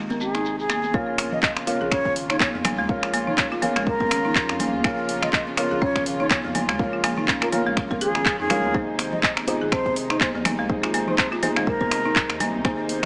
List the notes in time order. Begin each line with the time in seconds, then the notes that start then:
Already playing: G#1 C3 D#3 G#3 D#4
0.10 A#4, muted conga, high conga, shekere
0.21 C4 G#4, shekere
0.34 D#4, finger snap, muted conga, high conga, shekere
0.45 shekere
0.59 G#4, shekere
0.70 A#3, finger snap, muted conga, shekere
0.83 high conga, shekere
0.94 A#1 C#3 F3 A#3 F4 A#4 C#5, kick, muted conga
1.18 finger snap, open hi-hat, muted conga
1.32 F1 D#5, mid tom
1.43 D#5, kick, clap
1.56 finger snap, muted conga
1.67 F4 A#4 C#5, open hi-hat, high conga
1.81 A#1 G#4, muted conga
1.91 C#4 C#5, finger snap, kick
2.05 kick, muted conga
2.16 G#1, open hi-hat
2.30 D#4 C#5, finger snap, muted conga
2.40 A#3 C#5, kick, clap, high conga
2.54 F2 F3, high conga
2.64 A#1 A#3, finger snap, open hi-hat, mid tom, muted conga, high conga, low conga
2.79 D#2 G#3
2.89 A#1 F4 A#4 C#5, kick, muted conga
3.03 F4, finger snap
3.13 A#3, open hi-hat, muted conga
3.27 F1 D#4 C#5, mid tom
3.38 C#4 C#5, finger snap, kick, clap
3.52 F4, muted conga
3.62 A#3 F4 A#4 C#5, open hi-hat, mid tom, high conga
3.76 A#1 G#3, finger snap, muted conga
3.87 A#4, kick
4.00 A#4, kick, muted conga, high conga
4.11 G#1 C#4, finger snap, open hi-hat
4.25 D#4, muted conga, high conga
4.35 kick, clap
4.49 F2, finger snap
4.59 A#1 A#3, open hi-hat, muted conga, low conga
4.73 D#2, high conga
4.84 A#1 A#3 F4 A#4 C#5, finger snap, kick
5.09 open hi-hat, muted conga
5.22 F1 D#5, finger snap, mid tom
5.33 D#5, kick, clap
5.47 muted conga
5.57 F4 A#4 C#5, finger snap, open hi-hat, high conga
5.71 A#1 G#4, muted conga
5.82 C#4 C#5, kick
5.96 finger snap, kick, muted conga
6.06 G#1, open hi-hat
6.20 D#4 C#5, muted conga
6.30 A#3 C#5, finger snap, kick, clap, high conga
6.44 F2 F3, high conga
6.55 A#1 A#3, open hi-hat, mid tom, muted conga, high conga, low conga
6.69 D#2 G#3, finger snap
6.79 A#1 F4 A#4 C#5, kick, muted conga
6.93 F4
7.04 A#3, finger snap, open hi-hat, muted conga
7.18 F1 D#4, mid tom
7.28 C#4, kick, clap
7.42 F4 A#4, finger snap, muted conga
7.52 A#3 F4 A#4 C#5, open hi-hat, mid tom, high conga
7.66 A#1 G#3, muted conga
7.77 finger snap, kick
7.91 A#4, kick, muted conga, high conga
8.01 G#1 G#4, open hi-hat
8.15 C#4, finger snap, muted conga, high conga
8.26 kick, clap
8.39 F2 D#4 G#4
8.50 A#1 G#3 F4 A#4 C#5, finger snap, open hi-hat, muted conga, low conga
8.64 D#2, high conga
8.74 G#1 C3 D#3 G#3 A#3 D#4 G#4 C5, kick, muted conga
8.99 finger snap, open hi-hat, muted conga
9.12 D#1 D#5, mid tom
9.23 D#5, kick, clap
9.37 finger snap, muted conga
9.47 D#4 F4 G#4 C5, open hi-hat, high conga
9.61 G#1 G#4, muted conga
9.72 C4 C5, finger snap, kick
9.86 kick, muted conga
9.96 F1, open hi-hat
10.10 D#4 C5, finger snap, muted conga
10.21 A#3 C5, kick, clap, high conga
10.35 D#2 F3, high conga
10.45 G#1 A#3, finger snap, open hi-hat, mid tom, muted conga, high conga, low conga
10.59 C2 G#3
10.69 G#1 D#4 G#4 C5, kick, muted conga
10.83 F4, finger snap
10.94 A#3, open hi-hat, muted conga
11.08 D#1 D#4 C5, mid tom
11.18 C4 C5, finger snap, kick, clap
11.32 F4, muted conga
11.43 A#3 D#4 G#4 C5, open hi-hat, mid tom, high conga
11.56 G#1 G#3, finger snap, muted conga
11.67 A#4, kick
11.81 A#4, kick, muted conga, high conga
11.91 F1 C4, finger snap, open hi-hat
12.05 D#4, muted conga, high conga
12.16 kick, clap
12.30 D#2, finger snap
12.40 G#1 A#3, open hi-hat, muted conga, low conga
12.54 C2, high conga
12.65 G#1 A#3 D#4 G#4 C5, finger snap, kick, muted conga
12.89 open hi-hat, muted conga